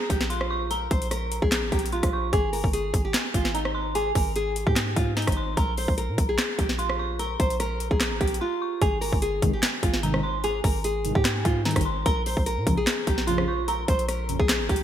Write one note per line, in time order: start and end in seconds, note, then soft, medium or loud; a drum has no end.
0.00 0.26 A#5 medium
0.10 0.88 A#1 loud
0.10 0.26 G4 medium
0.10 kick medium
0.10 closed hi-hat medium
0.21 snare medium
0.30 0.68 F4 medium
0.30 0.49 C6 medium
0.30 closed hi-hat medium
0.41 cross-stick medium
0.50 0.70 C#6 medium
0.71 0.86 A#4 medium
0.71 1.88 A#5 loud
0.71 closed hi-hat medium
0.91 1.40 A#1 loud
0.91 1.07 C5 medium
0.91 kick loud
0.91 closed hi-hat medium
0.91 open hi-hat medium
1.02 closed hi-hat medium
1.11 1.40 A#4 medium
1.11 cross-stick medium
1.11 closed hi-hat medium
1.32 closed hi-hat medium
1.42 1.64 A#1 loud
1.42 1.70 G#4 medium
1.42 kick medium
1.52 snare loud
1.52 clap medium
1.52 closed hi-hat medium
1.63 1.72 G#1 loud
1.72 2.02 A#1 loud
1.72 1.88 G4 medium
1.72 kick medium
1.72 closed hi-hat soft
1.79 closed hi-hat medium
1.86 closed hi-hat medium
1.92 2.31 F4 medium
1.92 2.12 C6 medium
1.92 closed hi-hat soft
2.03 2.32 A#1 loud
2.03 kick loud
2.03 cross-stick medium
2.03 closed hi-hat medium
2.13 2.32 C#6 medium
2.33 2.55 G#1 loud
2.33 2.49 G#4 medium
2.33 3.51 G#5 loud
2.33 kick loud
2.33 closed hi-hat medium
2.53 2.63 G1 loud
2.53 2.69 A#4 medium
2.53 open hi-hat medium
2.64 2.93 G1 loud
2.64 kick medium
2.73 3.03 G#4 medium
2.73 closed hi-hat medium
2.94 3.13 G#1 loud
2.94 kick medium
2.94 closed hi-hat medium
3.05 3.33 G4 medium
3.14 snare loud
3.14 clap medium
3.14 closed hi-hat medium
3.34 4.12 G#1 loud
3.34 3.50 F4 medium
3.34 kick medium
3.34 closed hi-hat medium
3.45 snare medium
3.54 3.93 D#4 medium
3.54 3.74 A#5 medium
3.54 closed hi-hat medium
3.65 cross-stick medium
3.74 3.94 C6 medium
3.95 4.11 G#4 medium
3.95 5.13 G#5 loud
3.95 closed hi-hat medium
4.15 4.65 G#1 loud
4.15 4.31 A#4 medium
4.15 kick loud
4.15 open hi-hat medium
4.36 4.65 G#4 medium
4.36 closed hi-hat medium
4.56 closed hi-hat medium
4.67 4.95 G#2 loud
4.67 4.95 G4 medium
4.67 kick medium
4.76 snare loud
4.76 clap medium
4.76 closed hi-hat medium
4.96 5.26 G#2 loud
4.96 5.12 F4 medium
4.96 kick medium
4.96 closed hi-hat medium
5.17 5.55 D#4 medium
5.17 5.36 A#5 medium
5.17 snare medium
5.17 closed hi-hat soft
5.22 closed hi-hat medium
5.27 5.56 G#1 loud
5.27 kick loud
5.27 cross-stick medium
5.27 closed hi-hat medium
5.32 closed hi-hat medium
5.37 5.56 C6 medium
5.57 5.87 A#1 loud
5.57 5.73 A#4 medium
5.57 6.75 A#5 medium
5.57 kick loud
5.57 closed hi-hat medium
5.78 5.93 C5 medium
5.78 open hi-hat medium
5.88 6.10 A#1 loud
5.88 kick medium
5.98 6.27 A#4 medium
5.98 closed hi-hat medium
6.09 6.18 A#2 loud
6.18 6.38 A#1 loud
6.18 kick loud
6.18 closed hi-hat medium
6.29 6.57 G#4 medium
6.38 snare loud
6.38 clap loud
6.38 closed hi-hat medium
6.58 7.36 A#1 loud
6.58 6.74 G4 medium
6.58 kick medium
6.58 closed hi-hat medium
6.69 snare medium
6.78 7.17 F4 medium
6.78 6.98 C6 medium
6.78 closed hi-hat medium
6.90 cross-stick medium
6.99 7.18 C#6 medium
7.19 7.35 A#4 medium
7.19 8.37 A#5 loud
7.19 closed hi-hat medium
7.40 7.89 A#1 loud
7.40 7.55 C5 medium
7.40 kick loud
7.40 closed hi-hat medium
7.40 open hi-hat medium
7.50 closed hi-hat medium
7.60 7.89 A#4 medium
7.60 cross-stick medium
7.60 closed hi-hat medium
7.80 closed hi-hat medium
7.91 8.13 A#1 loud
7.91 8.19 G#4 medium
7.91 kick medium
8.00 snare loud
8.00 clap medium
8.00 closed hi-hat medium
8.11 8.20 G#1 loud
8.21 8.40 A#1 loud
8.21 8.36 G4 medium
8.21 kick medium
8.21 closed hi-hat medium
8.28 closed hi-hat medium
8.34 closed hi-hat medium
8.41 8.79 F4 medium
8.41 8.60 C6 medium
8.62 8.81 C#6 medium
8.82 9.03 G#1 loud
8.82 8.97 G#4 medium
8.82 9.99 G#5 loud
8.82 kick loud
8.82 closed hi-hat medium
9.01 9.12 G1 loud
9.01 9.17 A#4 medium
9.01 open hi-hat medium
9.13 9.41 G1 loud
9.13 kick medium
9.22 9.51 G#4 medium
9.22 closed hi-hat medium
9.42 9.62 G#1 loud
9.42 9.52 C2 loud
9.42 9.52 G#2 loud
9.42 9.52 D#3 loud
9.42 kick loud
9.42 closed hi-hat medium
9.53 9.81 G4 medium
9.63 snare loud
9.63 clap loud
9.63 closed hi-hat loud
9.83 10.61 G#1 loud
9.83 9.98 F4 medium
9.83 kick medium
9.83 closed hi-hat medium
9.94 snare medium
10.03 10.20 C2 loud
10.03 10.20 G#2 loud
10.03 10.20 D#3 loud
10.03 10.41 D#4 medium
10.03 10.22 A#5 medium
10.03 closed hi-hat medium
10.14 cross-stick medium
10.23 10.43 C6 medium
10.44 10.59 G#4 medium
10.44 11.61 G#5 loud
10.44 closed hi-hat medium
10.64 11.13 G#1 loud
10.64 10.80 A#4 medium
10.64 kick loud
10.64 open hi-hat medium
10.84 11.14 G#4 medium
10.84 closed hi-hat medium
11.05 11.14 C2 loud
11.05 11.14 G#2 loud
11.05 11.14 D#3 loud
11.05 closed hi-hat medium
11.15 11.44 G#2 loud
11.15 11.43 G4 medium
11.15 kick medium
11.25 snare loud
11.25 clap loud
11.25 closed hi-hat medium
11.45 11.75 G#2 loud
11.45 11.61 F4 medium
11.45 kick medium
11.45 closed hi-hat medium
11.65 11.83 C2 loud
11.65 11.83 G#2 loud
11.65 11.83 D#3 loud
11.65 12.04 D#4 medium
11.65 11.85 A#5 medium
11.65 snare medium
11.65 closed hi-hat soft
11.71 closed hi-hat medium
11.76 12.05 G#1 loud
11.76 kick loud
11.76 cross-stick medium
11.76 closed hi-hat medium
11.81 closed hi-hat medium
11.85 12.05 C6 medium
12.06 12.36 A#1 loud
12.06 12.21 A#4 medium
12.06 13.23 A#5 medium
12.06 kick loud
12.06 closed hi-hat medium
12.26 12.42 C5 medium
12.26 open hi-hat medium
12.37 12.59 A#1 loud
12.37 kick medium
12.46 12.76 A#4 medium
12.46 closed hi-hat medium
12.57 12.66 A#2 loud
12.67 12.76 A#1 loud
12.67 12.86 A#1 loud
12.67 12.76 F2 loud
12.67 12.76 C#3 loud
12.67 kick loud
12.67 closed hi-hat medium
12.77 13.05 G#4 medium
12.87 snare loud
12.87 clap medium
12.87 closed hi-hat medium
13.07 13.85 A#1 loud
13.07 13.23 G4 medium
13.07 kick medium
13.07 closed hi-hat medium
13.18 snare medium
13.27 13.45 A#1 loud
13.27 13.45 F2 loud
13.27 13.45 C#3 loud
13.27 13.65 F4 medium
13.27 13.47 C6 medium
13.27 closed hi-hat medium
13.38 cross-stick medium
13.48 13.67 C#6 medium
13.68 13.84 A#4 medium
13.68 14.83 A#5 medium
13.68 closed hi-hat medium
13.88 14.38 A#1 loud
13.88 14.04 C5 medium
13.88 kick loud
13.88 closed hi-hat medium
13.88 open hi-hat medium
13.99 closed hi-hat medium
14.09 14.38 A#4 medium
14.09 cross-stick medium
14.09 closed hi-hat medium
14.29 14.38 A#1 medium
14.29 14.38 F2 loud
14.29 14.38 C#3 loud
14.29 closed hi-hat medium
14.40 14.61 A#1 loud
14.40 14.68 G#4 medium
14.40 kick loud
14.49 snare loud
14.49 clap medium
14.49 closed hi-hat medium
14.60 14.69 G#1 loud
14.69 14.83 A#1 loud
14.69 14.83 G4 medium
14.69 kick medium
14.69 closed hi-hat soft
14.76 closed hi-hat medium